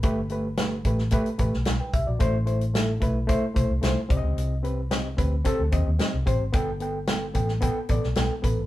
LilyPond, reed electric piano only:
<<
  \new Staff \with { instrumentName = "Reed electric piano" } { \time 4/4 \key g \major \tempo 4 = 111 << { r2. r16 <b' g''>16 <g' e''>16 <fis' d''>16~ | <fis' d''>16 r2. r8. | r1 | r1 | } \\ { <a g' b'>8 <a g' b'>8 <a g' b'>8 <a g' b'>8 <a g' b'>8 <a g' b'>8 r4 | <a e' c''>8 <a e' c''>8 <a e' a'>8 <a e' b'>8 <a e' c''>8 <a e' c''>8 <a e' c''>8 <c' g' d'' ees''>8~ | <c' g' d'' ees''>8 <c' g' b'>8 <c' g' ees''>8 <c' g' b'>8 <c' g' a'>8 <c' g' ees''>8 <c' g' ees''>8 <c' g' c''>8 | <b a' g''>8 <b a' g''>8 <b a' g''>8 <b a' g''>8 <b a' g''>8 <b a' d''>8 <b a' g''>8 <b a' b'>8 | } >> }
  \new Staff \with { instrumentName = "Reed electric piano" } { \clef bass \time 4/4 \key g \major g,4. r2 r8 | a,4. r2 c8~ | c4 r2. | g,4. r2 r8 | }
>>